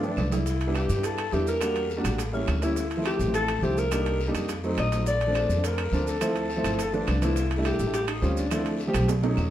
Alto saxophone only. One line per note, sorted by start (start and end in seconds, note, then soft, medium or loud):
0.05 0.35 D4 medium
0.34 0.76 E4 medium
0.76 1.07 G4 medium
1.05 1.35 A4 loud
1.34 1.47 G4 loud
1.48 2.01 A#4 loud
2.34 2.60 C#4 medium
2.64 3.03 E4 medium
3.06 3.33 G4 medium
3.35 3.65 A4 loud
3.63 3.80 G4 loud
3.79 4.35 A#4 loud
4.79 5.05 D#5 loud
5.07 5.67 D5 loud
5.65 6.09 A#4 medium
6.08 6.96 A4 loud
6.94 7.22 D4 loud
7.24 7.63 E4 medium
7.66 7.92 G4 medium
7.95 8.07 G4 loud
8.09 8.39 D#4 medium
8.38 8.95 D4 medium